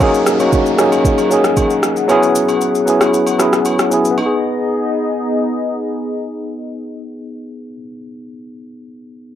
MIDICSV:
0, 0, Header, 1, 5, 480
1, 0, Start_track
1, 0, Key_signature, 5, "minor"
1, 0, Tempo, 521739
1, 3, Time_signature, 4, 2, 24, 8
1, 8604, End_track
2, 0, Start_track
2, 0, Title_t, "Analog synth pad"
2, 0, Program_c, 0, 89
2, 6, Note_on_c, 0, 68, 77
2, 6, Note_on_c, 0, 70, 75
2, 6, Note_on_c, 0, 78, 91
2, 7, Note_on_c, 0, 61, 80
2, 1905, Note_off_c, 0, 70, 0
2, 1906, Note_off_c, 0, 61, 0
2, 1921, Note_on_c, 0, 64, 83
2, 1921, Note_on_c, 0, 71, 75
2, 3807, Note_off_c, 0, 68, 0
2, 3808, Note_off_c, 0, 78, 0
2, 3823, Note_off_c, 0, 64, 0
2, 3823, Note_off_c, 0, 71, 0
2, 3843, Note_on_c, 0, 75, 91
2, 3844, Note_on_c, 0, 63, 77
2, 3844, Note_on_c, 0, 68, 72
2, 3845, Note_on_c, 0, 59, 85
2, 7065, Note_off_c, 0, 68, 0
2, 7065, Note_off_c, 0, 75, 0
2, 7066, Note_off_c, 0, 63, 0
2, 7067, Note_off_c, 0, 59, 0
2, 8604, End_track
3, 0, Start_track
3, 0, Title_t, "Tine electric piano"
3, 0, Program_c, 1, 4
3, 0, Control_c, 1, 64, 127
3, 0, Note_on_c, 1, 54, 110
3, 1, Note_on_c, 1, 58, 103
3, 9, Note_on_c, 1, 61, 98
3, 13, Control_c, 1, 64, 0
3, 18, Note_on_c, 1, 63, 99
3, 26, Note_on_c, 1, 68, 115
3, 173, Control_c, 1, 64, 127
3, 287, Note_off_c, 1, 54, 0
3, 292, Note_off_c, 1, 58, 0
3, 296, Note_off_c, 1, 61, 0
3, 300, Note_off_c, 1, 63, 0
3, 304, Note_off_c, 1, 68, 0
3, 358, Note_on_c, 1, 54, 76
3, 367, Note_on_c, 1, 58, 70
3, 375, Note_on_c, 1, 61, 69
3, 384, Note_on_c, 1, 63, 71
3, 392, Note_on_c, 1, 66, 81
3, 649, Note_off_c, 1, 54, 0
3, 653, Note_off_c, 1, 58, 0
3, 657, Note_off_c, 1, 61, 0
3, 662, Note_off_c, 1, 63, 0
3, 666, Note_off_c, 1, 66, 0
3, 711, Note_on_c, 1, 54, 81
3, 720, Note_on_c, 1, 58, 71
3, 729, Note_on_c, 1, 61, 74
3, 738, Note_on_c, 1, 63, 73
3, 746, Note_on_c, 1, 68, 87
3, 1105, Note_off_c, 1, 54, 0
3, 1109, Note_off_c, 1, 58, 0
3, 1114, Note_off_c, 1, 61, 0
3, 1118, Note_off_c, 1, 63, 0
3, 1122, Note_off_c, 1, 68, 0
3, 1191, Note_on_c, 1, 54, 78
3, 1201, Note_on_c, 1, 58, 72
3, 1210, Note_on_c, 1, 61, 73
3, 1218, Note_on_c, 1, 63, 70
3, 1227, Note_on_c, 1, 68, 90
3, 1777, Note_off_c, 1, 54, 0
3, 1782, Note_off_c, 1, 58, 0
3, 1786, Note_off_c, 1, 61, 0
3, 1790, Note_off_c, 1, 63, 0
3, 1795, Note_off_c, 1, 68, 0
3, 1911, Note_on_c, 1, 54, 111
3, 1920, Note_on_c, 1, 59, 100
3, 1929, Note_on_c, 1, 61, 101
3, 1934, Control_c, 1, 64, 0
3, 1938, Note_on_c, 1, 64, 99
3, 1945, Note_on_c, 1, 68, 120
3, 2102, Control_c, 1, 64, 127
3, 2497, Note_off_c, 1, 54, 0
3, 2501, Note_off_c, 1, 59, 0
3, 2505, Note_off_c, 1, 61, 0
3, 2510, Note_off_c, 1, 64, 0
3, 2514, Note_off_c, 1, 68, 0
3, 2630, Note_on_c, 1, 54, 79
3, 2639, Note_on_c, 1, 59, 74
3, 2647, Note_on_c, 1, 61, 74
3, 2657, Note_on_c, 1, 64, 72
3, 2665, Note_on_c, 1, 68, 91
3, 3024, Note_off_c, 1, 54, 0
3, 3029, Note_off_c, 1, 59, 0
3, 3033, Note_off_c, 1, 61, 0
3, 3037, Note_off_c, 1, 64, 0
3, 3041, Note_off_c, 1, 68, 0
3, 3109, Note_on_c, 1, 54, 79
3, 3118, Note_on_c, 1, 59, 70
3, 3126, Note_on_c, 1, 61, 73
3, 3135, Note_on_c, 1, 64, 73
3, 3143, Note_on_c, 1, 68, 90
3, 3504, Note_off_c, 1, 54, 0
3, 3508, Note_off_c, 1, 59, 0
3, 3512, Note_off_c, 1, 61, 0
3, 3517, Note_off_c, 1, 64, 0
3, 3521, Note_off_c, 1, 68, 0
3, 3591, Note_on_c, 1, 54, 75
3, 3600, Note_on_c, 1, 59, 68
3, 3609, Note_on_c, 1, 61, 69
3, 3617, Note_on_c, 1, 64, 68
3, 3625, Note_on_c, 1, 68, 85
3, 3768, Note_off_c, 1, 59, 0
3, 3779, Note_on_c, 1, 59, 81
3, 3791, Note_off_c, 1, 54, 0
3, 3800, Note_off_c, 1, 61, 0
3, 3804, Note_off_c, 1, 64, 0
3, 3808, Note_off_c, 1, 68, 0
3, 3849, Note_on_c, 1, 63, 71
3, 3853, Control_c, 1, 64, 0
3, 3919, Note_on_c, 1, 68, 86
3, 4040, Control_c, 1, 64, 127
3, 7001, Note_off_c, 1, 59, 0
3, 7071, Note_off_c, 1, 63, 0
3, 7140, Note_off_c, 1, 68, 0
3, 8604, End_track
4, 0, Start_track
4, 0, Title_t, "Downlifter"
4, 0, Program_c, 2, 103
4, 3, Note_on_c, 2, 60, 77
4, 3843, Note_off_c, 2, 60, 0
4, 8604, End_track
5, 0, Start_track
5, 0, Title_t, "Drums"
5, 2, Note_on_c, 9, 82, 64
5, 3, Note_on_c, 9, 36, 117
5, 5, Note_on_c, 9, 67, 77
5, 94, Note_off_c, 9, 82, 0
5, 95, Note_off_c, 9, 36, 0
5, 97, Note_off_c, 9, 67, 0
5, 131, Note_on_c, 9, 82, 53
5, 223, Note_off_c, 9, 82, 0
5, 243, Note_on_c, 9, 37, 90
5, 244, Note_on_c, 9, 82, 94
5, 335, Note_off_c, 9, 37, 0
5, 336, Note_off_c, 9, 82, 0
5, 366, Note_on_c, 9, 82, 48
5, 367, Note_on_c, 9, 67, 73
5, 458, Note_off_c, 9, 82, 0
5, 459, Note_off_c, 9, 67, 0
5, 482, Note_on_c, 9, 82, 72
5, 485, Note_on_c, 9, 36, 94
5, 574, Note_off_c, 9, 82, 0
5, 577, Note_off_c, 9, 36, 0
5, 608, Note_on_c, 9, 82, 49
5, 700, Note_off_c, 9, 82, 0
5, 723, Note_on_c, 9, 37, 95
5, 723, Note_on_c, 9, 82, 75
5, 815, Note_off_c, 9, 37, 0
5, 815, Note_off_c, 9, 82, 0
5, 848, Note_on_c, 9, 67, 67
5, 848, Note_on_c, 9, 82, 51
5, 940, Note_off_c, 9, 67, 0
5, 940, Note_off_c, 9, 82, 0
5, 963, Note_on_c, 9, 36, 108
5, 966, Note_on_c, 9, 82, 70
5, 1055, Note_off_c, 9, 36, 0
5, 1058, Note_off_c, 9, 82, 0
5, 1085, Note_on_c, 9, 67, 70
5, 1088, Note_on_c, 9, 82, 55
5, 1177, Note_off_c, 9, 67, 0
5, 1180, Note_off_c, 9, 82, 0
5, 1204, Note_on_c, 9, 82, 94
5, 1296, Note_off_c, 9, 82, 0
5, 1328, Note_on_c, 9, 37, 94
5, 1328, Note_on_c, 9, 82, 60
5, 1420, Note_off_c, 9, 37, 0
5, 1420, Note_off_c, 9, 82, 0
5, 1441, Note_on_c, 9, 82, 74
5, 1443, Note_on_c, 9, 36, 89
5, 1445, Note_on_c, 9, 67, 68
5, 1533, Note_off_c, 9, 82, 0
5, 1535, Note_off_c, 9, 36, 0
5, 1537, Note_off_c, 9, 67, 0
5, 1566, Note_on_c, 9, 82, 45
5, 1658, Note_off_c, 9, 82, 0
5, 1683, Note_on_c, 9, 37, 90
5, 1683, Note_on_c, 9, 82, 81
5, 1775, Note_off_c, 9, 37, 0
5, 1775, Note_off_c, 9, 82, 0
5, 1807, Note_on_c, 9, 82, 55
5, 1899, Note_off_c, 9, 82, 0
5, 1923, Note_on_c, 9, 82, 62
5, 1924, Note_on_c, 9, 67, 77
5, 2015, Note_off_c, 9, 82, 0
5, 2016, Note_off_c, 9, 67, 0
5, 2051, Note_on_c, 9, 82, 52
5, 2143, Note_off_c, 9, 82, 0
5, 2165, Note_on_c, 9, 82, 100
5, 2257, Note_off_c, 9, 82, 0
5, 2287, Note_on_c, 9, 67, 70
5, 2288, Note_on_c, 9, 82, 49
5, 2379, Note_off_c, 9, 67, 0
5, 2380, Note_off_c, 9, 82, 0
5, 2402, Note_on_c, 9, 82, 72
5, 2494, Note_off_c, 9, 82, 0
5, 2530, Note_on_c, 9, 82, 49
5, 2622, Note_off_c, 9, 82, 0
5, 2644, Note_on_c, 9, 82, 78
5, 2736, Note_off_c, 9, 82, 0
5, 2767, Note_on_c, 9, 67, 67
5, 2768, Note_on_c, 9, 37, 91
5, 2769, Note_on_c, 9, 82, 49
5, 2859, Note_off_c, 9, 67, 0
5, 2860, Note_off_c, 9, 37, 0
5, 2861, Note_off_c, 9, 82, 0
5, 2886, Note_on_c, 9, 82, 66
5, 2978, Note_off_c, 9, 82, 0
5, 3004, Note_on_c, 9, 67, 65
5, 3008, Note_on_c, 9, 82, 55
5, 3096, Note_off_c, 9, 67, 0
5, 3100, Note_off_c, 9, 82, 0
5, 3123, Note_on_c, 9, 37, 76
5, 3123, Note_on_c, 9, 82, 94
5, 3215, Note_off_c, 9, 37, 0
5, 3215, Note_off_c, 9, 82, 0
5, 3247, Note_on_c, 9, 37, 88
5, 3247, Note_on_c, 9, 82, 61
5, 3339, Note_off_c, 9, 37, 0
5, 3339, Note_off_c, 9, 82, 0
5, 3359, Note_on_c, 9, 82, 72
5, 3364, Note_on_c, 9, 67, 67
5, 3451, Note_off_c, 9, 82, 0
5, 3456, Note_off_c, 9, 67, 0
5, 3485, Note_on_c, 9, 82, 44
5, 3489, Note_on_c, 9, 37, 86
5, 3577, Note_off_c, 9, 82, 0
5, 3581, Note_off_c, 9, 37, 0
5, 3601, Note_on_c, 9, 82, 82
5, 3693, Note_off_c, 9, 82, 0
5, 3725, Note_on_c, 9, 82, 55
5, 3817, Note_off_c, 9, 82, 0
5, 3843, Note_on_c, 9, 67, 80
5, 3935, Note_off_c, 9, 67, 0
5, 8604, End_track
0, 0, End_of_file